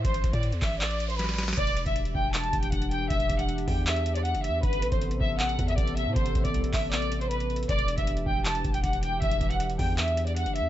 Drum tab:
HH |x-----x-----x-----x-----x-----x-----o-----------x-----x-----x-----x-----x-----x-----x-----------|x-----x-----x-----x-----x-----x-----------------x-----x-----x-----x-----x-----x-----x-----------|x-----x-----x-----x-----x-----x-----o-----------x-----x-----x-----x-----x-----x-----x-----------|x-----x-----x-----x-----x-----x-----------------x-----x-----x-----x-----x-----x-----x-----------|
CP |------------------------------------x-----------x-----------------------------------------------|------------------------------------------------x-----------------------------------------------|------------------------------------------------x-----------------------------------------------|------------------------------------------------x-----------------------------------------------|
SD |------------------------------------------------------------------------o--o--o--o--o--o--o--o--|------------------------------------------------------------------------------------------------|------------------------------------------------------------------------------------------------|------------------------------------------------------------------------------------------------|
BD |o-----------o-----o-----------------o-----------------------------------------------------------|o-----------------o-----------------o-----------------------o-----------o-----------------------|o-----------o-----------------------o-----------------------------------------------------------|o-----------------o-----------------o-----------------------o-----------o-----------------------|

HH |x-----x-----x-----x-----x-----x-----o-----------x-----x-----x-----x-----x-----x-----x---x---x---|x-----x-----x-----x-----x-----x-----------------x-----x-----x-----x-----x-----x-----x-----------|x-----x-----x-----x-----x-----x-----o-----------x-----x-----x-----x-----x-----x-----x-----------|
CP |------------------------------------x-----------x-----------------------------------------------|------------------------------------------------x-----------------------------------------------|------------------------------------------------x-----------------------------------------------|
SD |------------------------------------------------------------------------------------------------|------------------------------------------------------------------------------------------------|------------------------------------------------------------------------------------------------|
BD |o-----------o-----o-----------------o-----------------------------------------------------------|o-----------------o-----------------o-----------------------o-----------o-----------------------|o-----------o-----------------------o-----------------------------------------------------------|